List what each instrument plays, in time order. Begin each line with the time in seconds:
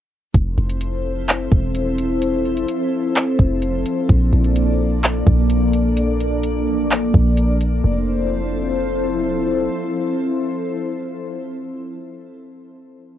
0.34 808-style bass F1, ambient pad F3 C4 E4 A4 C5, kick, closed hi-hat
0.58 808-style bass F1, closed hi-hat
0.69 closed hi-hat
0.81 closed hi-hat
1.28 clap, closed hi-hat
1.52 808-style bass E1, kick
1.75 closed hi-hat
1.98 closed hi-hat
2.22 closed hi-hat
2.45 closed hi-hat
2.57 closed hi-hat
2.68 closed hi-hat
3.16 clap, closed hi-hat
3.39 808-style bass F1, kick
3.62 closed hi-hat
3.86 closed hi-hat
4.09 808-style bass A#1, ambient pad A#3 D4 D5, kick, closed hi-hat
4.33 808-style bass A#1, closed hi-hat
4.44 closed hi-hat
4.56 closed hi-hat
5.03 clap, closed hi-hat
5.27 808-style bass A#1, kick
5.50 closed hi-hat
5.73 closed hi-hat
5.97 closed hi-hat
6.20 closed hi-hat
6.43 closed hi-hat
6.67 808-style bass A1
6.91 clap, closed hi-hat
7.14 808-style bass A#1, kick
7.37 closed hi-hat
7.61 closed hi-hat
7.84 808-style bass F1, ambient pad F3 C4 E4 A4 C5